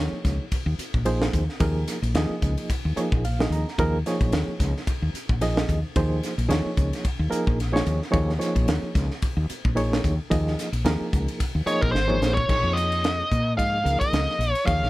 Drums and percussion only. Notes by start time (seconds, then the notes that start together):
0.25 kick, snare, hi-hat pedal, ride
0.52 kick, ride
0.79 hi-hat pedal, ride
0.94 kick
1.05 ride
1.22 snare
1.33 kick, hi-hat pedal, ride
1.49 snare
1.60 kick, ride
1.87 snare, hi-hat pedal, ride
2.03 ride
2.15 snare, ride
2.42 kick, hi-hat pedal, ride
2.57 ride
2.70 kick, ride
2.97 hi-hat pedal, ride
3.12 kick
3.25 ride
3.40 snare
3.52 hi-hat pedal, ride
3.68 snare
3.79 kick, ride
4.06 snare, hi-hat pedal, ride
4.21 kick, ride
4.32 snare, ride
4.60 kick, snare, hi-hat pedal, ride
4.77 snare
4.87 kick, ride
5.15 hi-hat pedal, ride
5.29 kick
5.41 snare, ride
5.57 snare
5.69 kick, hi-hat pedal, ride
5.96 kick, ride
6.23 snare, hi-hat pedal, ride
6.39 ride
6.50 snare, ride
6.77 kick, hi-hat pedal, ride
6.93 snare, ride
7.05 kick, ride
7.32 hi-hat pedal, ride
7.47 kick
7.60 snare, ride
7.76 snare
7.86 hi-hat pedal, ride
8.02 snare
8.14 kick, ride
8.29 snare
8.41 snare, hi-hat pedal, ride
8.56 kick, ride
8.68 snare, ride
8.95 kick, snare, hi-hat pedal, ride
9.11 snare
9.22 kick, ride
9.49 hi-hat pedal, ride
9.65 kick
9.77 ride
9.93 snare
10.04 kick, hi-hat pedal, ride
10.31 kick, ride
10.47 snare
10.59 snare, hi-hat pedal, ride
10.73 ride
10.85 snare, ride
11.13 kick, hi-hat pedal, ride
11.28 ride
11.40 kick, ride
11.67 hi-hat pedal, ride
11.82 kick
11.95 snare
12.10 mid tom
12.22 snare, hi-hat pedal
12.37 kick
12.49 kick, crash
12.77 hi-hat pedal, ride
12.92 ride
13.04 snare, ride
13.32 kick, hi-hat pedal, ride
13.59 kick, ride
13.86 hi-hat pedal, ride
14.01 kick, ride
14.13 snare, ride
14.29 snare
14.41 hi-hat pedal, ride
14.55 ride
14.67 kick, ride
14.83 snare